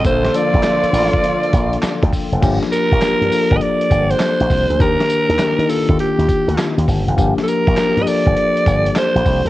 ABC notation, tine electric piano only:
X:1
M:4/4
L:1/16
Q:"Swing 16ths" 1/4=101
K:Gm
V:1 name="Tine electric piano"
[F,B,DA]2 [F,B,DA]6 z4 f g3 | [F,B,DG]2 z2 [F,B,DG]2 [F,B,DA]6 z4 | [E,B,DG]2 z2 [E,B,DG]2 [E,B,DF]6 z4 | [F,B,DG]2 z2 [F,B,DG]2 [F,B,DA]6 z4 |]